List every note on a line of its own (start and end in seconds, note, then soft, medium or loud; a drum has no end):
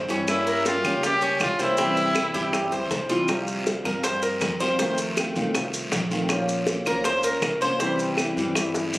0.00 0.78 G2 medium
0.08 0.27 E3 medium
0.08 0.26 G3 medium
0.08 0.27 C4 medium
0.08 0.46 C#4 medium
0.08 0.27 E4 medium
0.08 high bongo soft
0.08 short guiro medium
0.08 maracas soft
0.27 0.64 G3 medium
0.27 0.65 A#3 medium
0.27 0.65 C#4 medium
0.27 0.64 E4 medium
0.27 0.66 G4 medium
0.27 high bongo medium
0.27 long guiro medium
0.27 claves medium
0.27 maracas medium
0.47 0.83 A#4 medium
0.47 maracas soft
0.65 0.84 G3 soft
0.65 0.84 A#3 soft
0.65 0.84 C#4 medium
0.65 1.01 F4 loud
0.65 0.83 G4 medium
0.65 high bongo medium
0.65 short guiro medium
0.65 maracas medium
0.84 1.37 C#2 medium
0.84 1.03 A#3 medium
0.84 1.03 C#4 medium
0.84 1.02 G4 medium
0.84 1.21 G4 medium
0.84 short guiro medium
0.84 claves medium
0.84 maracas soft
1.03 1.39 G3 soft
1.03 1.40 A#3 medium
1.03 1.40 C#4 soft
1.03 1.40 G4 medium
1.03 1.39 G4 loud
1.03 high bongo medium
1.03 long guiro medium
1.03 maracas medium
1.21 1.59 C#4 medium
1.21 maracas soft
1.40 2.29 C2 loud
1.40 1.64 F4 loud
1.40 muted steel-string acoustic guitar stroke medium
1.40 high bongo medium
1.40 low bongo medium
1.40 short guiro medium
1.40 claves medium
1.40 maracas medium
1.59 1.78 A#3 medium
1.59 1.78 C#4 medium
1.59 2.93 E4 loud
1.59 1.78 G4 medium
1.59 1.78 C5 medium
1.59 short guiro medium
1.59 maracas soft
1.77 2.15 C3 medium
1.77 2.14 E3 medium
1.77 2.15 G3 medium
1.77 1.97 C4 medium
1.77 2.16 C4 medium
1.77 2.16 E4 medium
1.77 high bongo medium
1.77 long guiro medium
1.77 maracas medium
1.96 2.34 E4 medium
1.96 high bongo soft
1.96 maracas soft
2.15 2.34 E3 medium
2.15 2.34 G3 medium
2.15 2.34 C4 medium
2.15 2.33 E4 medium
2.15 high bongo medium
2.15 short guiro medium
2.15 claves medium
2.15 maracas medium
2.34 2.70 G2 medium
2.34 2.52 E3 medium
2.34 2.53 G3 medium
2.34 2.53 C4 medium
2.34 2.53 E4 medium
2.34 2.71 G4 medium
2.34 short guiro medium
2.34 maracas soft
2.53 2.90 E3 soft
2.53 2.90 G3 medium
2.53 2.90 C4 medium
2.53 2.91 E4 medium
2.53 high bongo medium
2.53 long guiro medium
2.53 claves medium
2.53 maracas medium
2.72 2.90 C#2 medium
2.72 3.09 C5 medium
2.72 high bongo soft
2.72 maracas soft
2.90 3.79 C2 medium
2.90 muted steel-string acoustic guitar stroke medium
2.90 high bongo medium
2.90 low bongo medium
2.90 short guiro medium
2.90 maracas medium
3.09 3.28 E3 medium
3.09 3.28 G3 medium
3.09 3.28 C4 medium
3.09 3.28 E4 medium
3.09 3.28 F4 medium
3.09 high bongo soft
3.09 short guiro medium
3.09 maracas soft
3.28 3.65 C3 medium
3.28 3.65 F3 medium
3.28 3.66 G3 medium
3.28 3.66 C4 medium
3.28 3.66 F4 medium
3.28 high bongo medium
3.28 long guiro medium
3.28 claves medium
3.28 maracas medium
3.47 maracas medium
3.66 3.84 F3 medium
3.66 3.85 G3 soft
3.66 3.85 C4 medium
3.66 3.84 F4 medium
3.66 high bongo medium
3.66 short guiro medium
3.66 maracas medium
3.84 4.37 G2 medium
3.84 4.03 F3 medium
3.84 4.03 G3 medium
3.84 4.04 C4 medium
3.84 4.03 F4 medium
3.84 4.04 A#4 medium
3.84 short guiro medium
3.84 claves medium
3.84 maracas soft
4.04 4.41 F3 soft
4.04 4.41 G3 medium
4.04 4.41 C4 medium
4.04 4.41 F4 medium
4.04 4.22 C5 medium
4.04 high bongo medium
4.04 long guiro medium
4.04 maracas medium
4.22 4.58 A#4 medium
4.22 maracas medium
4.41 5.30 F2 medium
4.41 muted steel-string acoustic guitar stroke medium
4.41 high bongo medium
4.41 low bongo medium
4.41 short guiro medium
4.41 claves medium
4.41 maracas medium
4.60 4.79 F3 medium
4.60 4.79 G3 medium
4.60 4.79 C4 medium
4.60 4.79 F4 medium
4.60 4.78 C5 medium
4.60 short guiro medium
4.60 maracas soft
4.79 5.16 C3 medium
4.79 5.16 D#3 medium
4.79 5.17 A3 medium
4.79 5.17 C4 medium
4.79 5.17 F4 medium
4.79 4.98 C5 medium
4.79 high bongo medium
4.79 long guiro medium
4.79 maracas medium
4.98 high bongo soft
4.98 maracas medium
5.17 5.35 D#3 medium
5.17 5.36 A3 medium
5.17 5.36 C4 medium
5.17 5.35 F4 medium
5.17 high bongo medium
5.17 short guiro medium
5.17 claves medium
5.17 maracas medium
5.36 5.88 C2 medium
5.36 5.54 D#3 medium
5.36 5.55 A3 medium
5.36 5.55 C4 medium
5.36 5.54 F4 medium
5.36 short guiro medium
5.36 maracas soft
5.55 5.91 D#3 soft
5.55 5.92 A3 soft
5.55 5.92 C4 medium
5.55 5.92 F4 medium
5.55 high bongo medium
5.55 long guiro medium
5.55 claves medium
5.55 maracas medium
5.74 high bongo soft
5.74 maracas medium
5.92 6.81 A#1 loud
5.92 muted steel-string acoustic guitar stroke medium
5.92 high bongo medium
5.92 low bongo medium
5.92 short guiro medium
5.92 maracas medium
6.11 6.30 D#3 medium
6.11 6.30 A3 medium
6.11 6.29 C4 medium
6.11 6.29 F4 medium
6.11 high bongo soft
6.11 short guiro medium
6.11 maracas soft
6.29 6.67 F3 medium
6.29 6.66 A#3 medium
6.29 6.67 C#4 medium
6.29 6.68 F4 medium
6.29 6.68 C5 medium
6.29 high bongo medium
6.29 long guiro medium
6.29 claves medium
6.29 maracas medium
6.49 maracas medium
6.67 6.86 A#3 medium
6.67 6.86 C#4 soft
6.67 6.86 F4 medium
6.67 6.85 C5 medium
6.67 high bongo medium
6.67 short guiro medium
6.67 maracas medium
6.86 7.39 C#2 medium
6.86 7.03 A#3 medium
6.86 7.04 C#4 medium
6.86 7.05 F4 medium
6.86 7.05 A#4 medium
6.86 7.04 C5 medium
6.86 short guiro medium
6.86 claves medium
6.86 maracas soft
7.04 7.42 A#3 soft
7.04 7.42 C#4 soft
7.04 7.42 F4 medium
7.04 7.23 C5 medium
7.04 7.42 C5 medium
7.04 high bongo medium
7.04 long guiro medium
7.04 maracas medium
7.23 7.59 A#4 medium
7.23 maracas medium
7.42 8.31 C2 medium
7.42 muted steel-string acoustic guitar stroke medium
7.42 high bongo medium
7.42 low bongo medium
7.42 short guiro medium
7.42 claves medium
7.42 maracas medium
7.60 7.80 A#3 medium
7.60 7.80 C#4 medium
7.60 7.80 F4 medium
7.60 7.79 C5 medium
7.60 short guiro medium
7.60 maracas soft
7.79 8.17 C3 medium
7.79 8.17 E3 medium
7.79 8.17 G3 medium
7.79 8.18 C4 medium
7.79 8.18 E4 medium
7.79 7.99 C5 medium
7.79 high bongo medium
7.79 long guiro medium
7.79 maracas medium
7.99 high bongo soft
7.99 maracas medium
8.17 8.36 E3 soft
8.17 8.37 G3 medium
8.17 8.36 C4 medium
8.17 8.36 E4 medium
8.17 high bongo medium
8.17 short guiro medium
8.17 claves medium
8.17 maracas medium
8.36 8.89 G2 medium
8.36 8.55 E3 medium
8.36 8.55 G3 medium
8.36 8.55 C4 medium
8.36 8.55 E4 medium
8.36 short guiro medium
8.36 maracas soft
8.55 8.93 E3 soft
8.55 8.93 G3 medium
8.55 8.94 C4 medium
8.55 8.94 E4 medium
8.55 high bongo medium
8.55 long guiro medium
8.55 claves medium
8.55 maracas medium
8.74 high bongo medium
8.74 maracas medium
8.93 8.98 A#1 medium
8.93 muted steel-string acoustic guitar stroke medium
8.93 short guiro medium
8.93 maracas medium